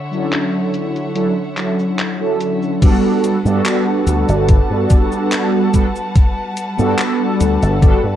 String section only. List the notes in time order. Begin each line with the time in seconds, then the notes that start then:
Already playing: D3 C#5 E5 F#5
2.82 G3 B4 F#5 A5